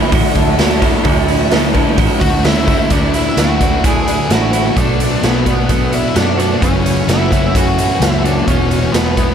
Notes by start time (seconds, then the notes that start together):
Already playing: D3 E3 F#3 A3 D4 E4 F#4 D5 E5 A5
0.11 A1 D3 F#3 A3 D4 E4 F#4, kick, open hi-hat
0.35 D2 A3 D4, kick, open hi-hat
0.57 D3 F#3 A3 D4 E4, snare, open hi-hat
0.80 A3 D4 E4 F#4, kick, open hi-hat
1.03 D2 D3 E3 F#3 A3 D4 E4, kick, open hi-hat
1.27 A3 D4 E4, open hi-hat
1.50 D3 F#3 A3 D4 E4, snare, open hi-hat
1.74 A3 D4 E4, kick, open hi-hat
1.96 A1 D3 F#3 A3 D4 E4 F#4, kick, open hi-hat
2.21 D2 A3 D4 F#4, kick, open hi-hat
2.43 D3 F#3 A3 D4 E4, snare, open hi-hat
2.67 A3 D4 E4 F#4, kick, open hi-hat
2.90 D2 D3 E3 F#3 A3 D4 E4, kick, closed hi-hat
3.14 A3 D4 E4, closed hi-hat
3.37 D2 D3 F#3 A3 D4 E4 F#4, snare, closed hi-hat
3.60 A3 D4 E4, kick, closed hi-hat
3.84 D3 E3 F#3 A3 D4 E4 G#4, kick, closed hi-hat
4.07 A3 D4 E4, closed hi-hat
4.29 A1 D3 F#3 A3 D4 E4 F#4, snare, closed hi-hat
4.53 A3 D4 E4, closed hi-hat
4.76 B1 B2 F#3 A3 B3 D4 F#4, kick, closed hi-hat
4.98 A3 D4 F#4, closed hi-hat
5.22 B1 B2 F#3 A3 B3 D4 F#4, snare, closed hi-hat
5.46 A3 D4 F#4, kick, closed hi-hat
5.69 B2 F#3 A3 B3 D4 F#4, kick, closed hi-hat
5.92 F#3 A3 B3 D4 E4 F#4, closed hi-hat
6.14 F#2 B2 F#3 A3 B3 D4 F#4, snare, closed hi-hat
6.37 A3 D4 F#4, closed hi-hat
6.60 F#1 F#2 C#3 E3 A3 C#4 F#4, kick, closed hi-hat
6.65 F#3
6.85 E3 A3 C#4 F#4, closed hi-hat
7.07 F#1 F#2 C#3 E3 F#3 A3 C#4 E4, snare, closed hi-hat
7.12 F#4
7.32 E3 A3 C#4 E4 F#4, kick, closed hi-hat
7.55 F#2 C#3 E3 F#3 A3 C#4 F#4, kick, closed hi-hat
7.78 C#3 E3 F#3 A3 C#4 F#4, closed hi-hat
7.99 C#2 F#2 C#3 E3 F#3 A3 E4, snare, closed hi-hat
8.03 C#4 F#4
8.24 E3 A3 C#4 D4 F#4, closed hi-hat
8.47 E1 E2 B2 E3 F#3 G#3 B3 C#4 F#4, kick, closed hi-hat
8.70 F#3 G#3 B3 F#4, closed hi-hat
8.92 E1 E2 B2 E3 F#3 G#3 B3 F#4, snare, closed hi-hat
9.17 F#3 G#3 B3 E4 F#4, kick, closed hi-hat